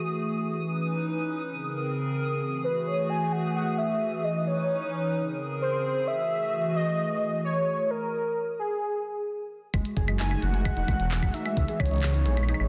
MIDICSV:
0, 0, Header, 1, 7, 480
1, 0, Start_track
1, 0, Tempo, 458015
1, 606, Time_signature, 4, 2, 24, 8
1, 13292, End_track
2, 0, Start_track
2, 0, Title_t, "Synth texture"
2, 0, Program_c, 0, 99
2, 0, Note_on_c, 0, 87, 85
2, 8285, Note_off_c, 0, 87, 0
2, 13292, End_track
3, 0, Start_track
3, 0, Title_t, "Soft synth lead"
3, 0, Program_c, 1, 80
3, 2764, Note_on_c, 1, 71, 88
3, 3004, Note_on_c, 1, 73, 95
3, 3020, Note_off_c, 1, 71, 0
3, 3244, Note_on_c, 1, 80, 109
3, 3259, Note_off_c, 1, 73, 0
3, 3484, Note_on_c, 1, 78, 96
3, 3499, Note_off_c, 1, 80, 0
3, 3718, Note_off_c, 1, 78, 0
3, 3724, Note_on_c, 1, 78, 96
3, 3964, Note_on_c, 1, 76, 99
3, 3979, Note_off_c, 1, 78, 0
3, 4445, Note_on_c, 1, 75, 99
3, 4461, Note_off_c, 1, 76, 0
3, 4685, Note_on_c, 1, 73, 91
3, 4700, Note_off_c, 1, 75, 0
3, 5645, Note_off_c, 1, 73, 0
3, 5885, Note_on_c, 1, 72, 102
3, 6365, Note_on_c, 1, 76, 118
3, 6380, Note_off_c, 1, 72, 0
3, 7078, Note_off_c, 1, 76, 0
3, 7085, Note_on_c, 1, 75, 110
3, 7763, Note_off_c, 1, 75, 0
3, 7804, Note_on_c, 1, 73, 106
3, 8286, Note_on_c, 1, 70, 97
3, 8301, Note_off_c, 1, 73, 0
3, 9000, Note_off_c, 1, 70, 0
3, 9007, Note_on_c, 1, 68, 85
3, 9924, Note_off_c, 1, 68, 0
3, 10683, Note_on_c, 1, 80, 117
3, 10923, Note_on_c, 1, 78, 122
3, 10939, Note_off_c, 1, 80, 0
3, 11883, Note_on_c, 1, 76, 103
3, 11899, Note_off_c, 1, 78, 0
3, 12362, Note_on_c, 1, 73, 96
3, 12378, Note_off_c, 1, 76, 0
3, 13292, Note_off_c, 1, 73, 0
3, 13292, End_track
4, 0, Start_track
4, 0, Title_t, "Analog synth pad"
4, 0, Program_c, 2, 89
4, 0, Note_on_c, 2, 52, 72
4, 0, Note_on_c, 2, 57, 70
4, 0, Note_on_c, 2, 66, 69
4, 0, Note_on_c, 2, 68, 84
4, 577, Note_off_c, 2, 68, 0
4, 587, Note_off_c, 2, 52, 0
4, 587, Note_off_c, 2, 57, 0
4, 587, Note_off_c, 2, 66, 0
4, 2525, Note_on_c, 2, 52, 76
4, 2525, Note_on_c, 2, 57, 67
4, 2525, Note_on_c, 2, 66, 68
4, 2525, Note_on_c, 2, 68, 79
4, 4426, Note_off_c, 2, 57, 0
4, 4426, Note_off_c, 2, 66, 0
4, 4426, Note_off_c, 2, 68, 0
4, 5377, Note_off_c, 2, 52, 0
4, 5407, Note_on_c, 2, 68, 75
4, 6365, Note_on_c, 2, 52, 77
4, 6365, Note_on_c, 2, 57, 67
4, 6366, Note_on_c, 2, 66, 69
4, 8257, Note_off_c, 2, 68, 0
4, 8266, Note_off_c, 2, 52, 0
4, 8266, Note_off_c, 2, 57, 0
4, 8267, Note_off_c, 2, 66, 0
4, 10207, Note_on_c, 2, 52, 75
4, 10207, Note_on_c, 2, 56, 73
4, 10207, Note_on_c, 2, 57, 73
4, 10207, Note_on_c, 2, 66, 89
4, 12107, Note_off_c, 2, 56, 0
4, 12107, Note_off_c, 2, 57, 0
4, 12107, Note_off_c, 2, 66, 0
4, 13057, Note_off_c, 2, 52, 0
4, 13292, End_track
5, 0, Start_track
5, 0, Title_t, "Synth pluck"
5, 0, Program_c, 3, 84
5, 10204, Note_on_c, 3, 56, 86
5, 10319, Note_off_c, 3, 56, 0
5, 10444, Note_on_c, 3, 68, 78
5, 10551, Note_off_c, 3, 68, 0
5, 10564, Note_on_c, 3, 56, 82
5, 10671, Note_off_c, 3, 56, 0
5, 10684, Note_on_c, 3, 63, 83
5, 10798, Note_off_c, 3, 63, 0
5, 10804, Note_on_c, 3, 56, 77
5, 10919, Note_off_c, 3, 56, 0
5, 11044, Note_on_c, 3, 68, 75
5, 11151, Note_off_c, 3, 68, 0
5, 11164, Note_on_c, 3, 56, 84
5, 11271, Note_off_c, 3, 56, 0
5, 11285, Note_on_c, 3, 63, 74
5, 11399, Note_off_c, 3, 63, 0
5, 11405, Note_on_c, 3, 56, 78
5, 11519, Note_off_c, 3, 56, 0
5, 11644, Note_on_c, 3, 68, 79
5, 11751, Note_off_c, 3, 68, 0
5, 11765, Note_on_c, 3, 56, 79
5, 11871, Note_off_c, 3, 56, 0
5, 11886, Note_on_c, 3, 63, 77
5, 12000, Note_off_c, 3, 63, 0
5, 12005, Note_on_c, 3, 56, 76
5, 12119, Note_off_c, 3, 56, 0
5, 12245, Note_on_c, 3, 68, 73
5, 12351, Note_off_c, 3, 68, 0
5, 12365, Note_on_c, 3, 56, 74
5, 12471, Note_off_c, 3, 56, 0
5, 12485, Note_on_c, 3, 63, 76
5, 12599, Note_off_c, 3, 63, 0
5, 12605, Note_on_c, 3, 56, 83
5, 12719, Note_off_c, 3, 56, 0
5, 12845, Note_on_c, 3, 68, 80
5, 12951, Note_off_c, 3, 68, 0
5, 12965, Note_on_c, 3, 56, 74
5, 13071, Note_off_c, 3, 56, 0
5, 13085, Note_on_c, 3, 63, 84
5, 13199, Note_off_c, 3, 63, 0
5, 13205, Note_on_c, 3, 56, 77
5, 13292, Note_off_c, 3, 56, 0
5, 13292, End_track
6, 0, Start_track
6, 0, Title_t, "Detuned saw bass"
6, 0, Program_c, 4, 39
6, 10205, Note_on_c, 4, 30, 98
6, 10283, Note_off_c, 4, 30, 0
6, 10445, Note_on_c, 4, 30, 93
6, 10857, Note_off_c, 4, 30, 0
6, 10925, Note_on_c, 4, 30, 100
6, 11217, Note_off_c, 4, 30, 0
6, 11285, Note_on_c, 4, 28, 93
6, 11363, Note_off_c, 4, 28, 0
6, 11405, Note_on_c, 4, 33, 84
6, 11483, Note_off_c, 4, 33, 0
6, 11525, Note_on_c, 4, 28, 87
6, 11765, Note_on_c, 4, 30, 92
6, 11781, Note_off_c, 4, 28, 0
6, 11843, Note_off_c, 4, 30, 0
6, 12125, Note_on_c, 4, 37, 98
6, 12203, Note_off_c, 4, 37, 0
6, 12365, Note_on_c, 4, 37, 92
6, 12846, Note_on_c, 4, 34, 102
6, 12861, Note_off_c, 4, 37, 0
6, 13138, Note_off_c, 4, 34, 0
6, 13205, Note_on_c, 4, 32, 90
6, 13283, Note_off_c, 4, 32, 0
6, 13292, End_track
7, 0, Start_track
7, 0, Title_t, "Drums"
7, 10205, Note_on_c, 9, 36, 99
7, 10205, Note_on_c, 9, 42, 64
7, 10205, Note_on_c, 9, 75, 53
7, 10310, Note_off_c, 9, 36, 0
7, 10310, Note_off_c, 9, 42, 0
7, 10310, Note_off_c, 9, 75, 0
7, 10325, Note_on_c, 9, 42, 43
7, 10430, Note_off_c, 9, 42, 0
7, 10445, Note_on_c, 9, 36, 118
7, 10445, Note_on_c, 9, 42, 102
7, 10550, Note_off_c, 9, 36, 0
7, 10550, Note_off_c, 9, 42, 0
7, 10565, Note_on_c, 9, 42, 43
7, 10565, Note_on_c, 9, 75, 84
7, 10670, Note_off_c, 9, 42, 0
7, 10670, Note_off_c, 9, 75, 0
7, 10685, Note_on_c, 9, 39, 121
7, 10685, Note_on_c, 9, 42, 70
7, 10790, Note_off_c, 9, 39, 0
7, 10790, Note_off_c, 9, 42, 0
7, 10805, Note_on_c, 9, 42, 43
7, 10805, Note_on_c, 9, 75, 57
7, 10910, Note_off_c, 9, 42, 0
7, 10910, Note_off_c, 9, 75, 0
7, 10925, Note_on_c, 9, 42, 96
7, 11030, Note_off_c, 9, 42, 0
7, 11045, Note_on_c, 9, 42, 42
7, 11150, Note_off_c, 9, 42, 0
7, 11165, Note_on_c, 9, 36, 100
7, 11165, Note_on_c, 9, 42, 68
7, 11165, Note_on_c, 9, 75, 81
7, 11270, Note_off_c, 9, 36, 0
7, 11270, Note_off_c, 9, 42, 0
7, 11270, Note_off_c, 9, 75, 0
7, 11285, Note_on_c, 9, 42, 42
7, 11390, Note_off_c, 9, 42, 0
7, 11405, Note_on_c, 9, 36, 118
7, 11405, Note_on_c, 9, 42, 100
7, 11405, Note_on_c, 9, 75, 54
7, 11510, Note_off_c, 9, 36, 0
7, 11510, Note_off_c, 9, 42, 0
7, 11510, Note_off_c, 9, 75, 0
7, 11525, Note_on_c, 9, 42, 42
7, 11630, Note_off_c, 9, 42, 0
7, 11645, Note_on_c, 9, 39, 118
7, 11645, Note_on_c, 9, 42, 69
7, 11750, Note_off_c, 9, 39, 0
7, 11750, Note_off_c, 9, 42, 0
7, 11765, Note_on_c, 9, 36, 120
7, 11765, Note_on_c, 9, 42, 43
7, 11765, Note_on_c, 9, 75, 84
7, 11870, Note_off_c, 9, 36, 0
7, 11870, Note_off_c, 9, 42, 0
7, 11870, Note_off_c, 9, 75, 0
7, 11885, Note_on_c, 9, 42, 98
7, 11990, Note_off_c, 9, 42, 0
7, 12005, Note_on_c, 9, 42, 41
7, 12005, Note_on_c, 9, 75, 56
7, 12110, Note_off_c, 9, 42, 0
7, 12110, Note_off_c, 9, 75, 0
7, 12125, Note_on_c, 9, 36, 107
7, 12125, Note_on_c, 9, 42, 69
7, 12230, Note_off_c, 9, 36, 0
7, 12230, Note_off_c, 9, 42, 0
7, 12245, Note_on_c, 9, 42, 42
7, 12350, Note_off_c, 9, 42, 0
7, 12365, Note_on_c, 9, 36, 123
7, 12365, Note_on_c, 9, 75, 86
7, 12425, Note_on_c, 9, 42, 100
7, 12470, Note_off_c, 9, 36, 0
7, 12470, Note_off_c, 9, 75, 0
7, 12485, Note_off_c, 9, 42, 0
7, 12485, Note_on_c, 9, 42, 19
7, 12509, Note_off_c, 9, 42, 0
7, 12509, Note_on_c, 9, 42, 24
7, 12533, Note_off_c, 9, 42, 0
7, 12533, Note_on_c, 9, 42, 28
7, 12557, Note_off_c, 9, 42, 0
7, 12557, Note_on_c, 9, 42, 31
7, 12581, Note_off_c, 9, 42, 0
7, 12581, Note_on_c, 9, 42, 36
7, 12605, Note_off_c, 9, 42, 0
7, 12605, Note_on_c, 9, 39, 127
7, 12605, Note_on_c, 9, 42, 70
7, 12605, Note_on_c, 9, 75, 52
7, 12710, Note_off_c, 9, 39, 0
7, 12710, Note_off_c, 9, 42, 0
7, 12710, Note_off_c, 9, 75, 0
7, 12725, Note_on_c, 9, 42, 41
7, 12830, Note_off_c, 9, 42, 0
7, 12845, Note_on_c, 9, 42, 98
7, 12950, Note_off_c, 9, 42, 0
7, 12966, Note_on_c, 9, 42, 43
7, 12966, Note_on_c, 9, 75, 38
7, 13026, Note_off_c, 9, 75, 0
7, 13026, Note_on_c, 9, 75, 46
7, 13070, Note_off_c, 9, 42, 0
7, 13085, Note_off_c, 9, 75, 0
7, 13085, Note_on_c, 9, 42, 67
7, 13085, Note_on_c, 9, 75, 55
7, 13145, Note_off_c, 9, 75, 0
7, 13145, Note_on_c, 9, 75, 65
7, 13190, Note_off_c, 9, 42, 0
7, 13206, Note_off_c, 9, 75, 0
7, 13206, Note_on_c, 9, 75, 54
7, 13292, Note_off_c, 9, 75, 0
7, 13292, End_track
0, 0, End_of_file